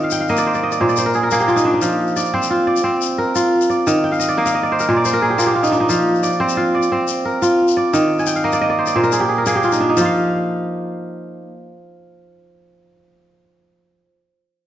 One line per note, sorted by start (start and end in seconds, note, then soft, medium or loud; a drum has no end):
0.00 0.84 D#3 medium
0.00 0.54 C4 medium
0.00 0.77 F4 medium
0.00 0.35 A#4 medium
0.00 0.36 D5 medium
0.00 0.20 F5 medium
0.11 1.05 G5 medium
0.11 shaker medium
0.21 1.20 F5 medium
0.28 1.31 A#3 medium
0.28 0.61 D#5 medium
0.28 shaker soft
0.37 0.54 D5 medium
0.37 shaker soft
0.46 0.80 C5 medium
0.54 0.72 D5 medium
0.54 shaker soft
0.63 0.95 D#5 medium
0.72 0.89 D5 medium
0.72 shaker soft
0.80 1.87 A#2 medium
0.80 0.98 C5 medium
0.89 1.62 D5 medium
0.89 shaker soft
0.96 2.17 C5 medium
0.96 shaker medium
1.06 1.23 A#4 medium
1.14 1.31 G#4 medium
1.14 shaker soft
1.23 2.50 A#4 medium
1.31 3.25 A#3 medium
1.31 2.68 G#4 medium
1.31 shaker medium
1.40 2.81 G4 medium
1.40 shaker soft
1.48 2.50 F4 medium
1.48 shaker soft
1.56 1.73 D#4 medium
1.56 shaker soft
1.65 3.33 D4 medium
1.74 2.22 D#4 medium
1.82 3.91 F3 medium
1.82 shaker medium
2.07 shaker soft
2.16 2.67 D5 medium
2.16 shaker medium
2.25 shaker soft
2.34 2.83 C4 medium
2.34 3.52 C5 medium
2.43 shaker soft
2.50 3.35 F4 medium
2.67 3.69 D5 medium
2.76 shaker soft
2.84 4.64 C4 medium
3.02 shaker medium
3.18 4.46 A#4 medium
3.35 4.87 F4 medium
3.35 shaker medium
3.61 shaker soft
3.70 4.26 D5 medium
3.70 shaker soft
3.87 4.93 D#3 medium
3.87 shaker medium
4.04 4.97 G5 medium
4.12 4.45 F5 medium
4.12 shaker soft
4.20 4.38 D#5 medium
4.20 shaker medium
4.29 4.61 D5 medium
4.29 shaker soft
4.37 5.38 A#3 medium
4.37 4.54 D#5 medium
4.46 5.46 F5 medium
4.46 shaker medium
4.55 5.03 D#5 medium
4.63 4.96 D5 medium
4.72 4.88 C5 medium
4.79 5.13 A#4 medium
4.79 shaker soft
4.89 5.95 A#2 medium
4.89 5.05 C5 medium
4.97 5.69 D5 medium
5.05 6.24 C5 medium
5.05 shaker medium
5.13 6.41 A#4 medium
5.22 5.52 G#4 medium
5.30 5.46 G4 medium
5.38 7.31 A#3 medium
5.38 5.55 F4 medium
5.38 shaker medium
5.46 6.88 G4 medium
5.55 6.56 F4 medium
5.63 5.80 D#4 medium
5.63 shaker soft
5.72 7.40 D4 medium
5.72 shaker soft
5.80 6.29 D#4 medium
5.89 7.98 F3 medium
5.89 shaker medium
6.15 shaker soft
6.23 6.74 D5 medium
6.23 shaker medium
6.32 shaker soft
6.40 6.91 C4 medium
6.40 7.59 C5 medium
6.49 shaker medium
6.57 7.42 F4 medium
6.75 7.76 D5 medium
6.82 shaker soft
6.92 8.72 C4 medium
7.08 shaker medium
7.25 8.53 A#4 medium
7.42 8.93 F4 medium
7.42 shaker medium
7.68 shaker soft
7.77 8.50 D5 medium
7.93 9.00 D#3 medium
7.93 shaker medium
8.19 9.09 G#5 medium
8.19 shaker soft
8.27 9.19 G5 medium
8.27 shaker medium
8.36 9.35 F5 medium
8.36 shaker soft
8.44 9.46 A#3 medium
8.44 8.61 D#5 medium
8.52 8.69 D5 medium
8.52 shaker medium
8.61 8.93 D#5 medium
8.70 8.87 D5 medium
8.79 8.95 C5 medium
8.86 9.78 D5 medium
8.86 shaker soft
8.96 10.01 A#2 medium
8.96 10.15 C5 medium
9.03 9.37 A#4 medium
9.03 shaker soft
9.12 9.28 G#4 medium
9.12 shaker medium
9.20 9.52 G4 medium
9.29 9.46 G#4 medium
9.38 10.65 A#4 medium
9.46 11.39 A#3 medium
9.46 10.83 G#4 medium
9.46 shaker medium
9.55 10.97 G4 medium
9.63 10.00 F4 medium
9.63 shaker soft
9.72 9.89 D#4 medium
9.72 shaker soft
9.80 11.48 D4 medium
9.89 11.52 D#4 medium
9.97 14.02 F3 medium
9.97 shaker medium
10.01 14.06 F4 medium
10.01 14.10 F5 medium